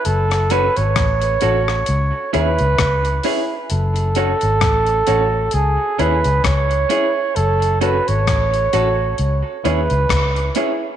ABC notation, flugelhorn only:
X:1
M:4/4
L:1/16
Q:"Swing 16ths" 1/4=66
K:F#dor
V:1 name="Flugelhorn"
A2 B c6- c B4- B z | A8 G2 B2 c4 | A2 B c6 z B4 z2 |]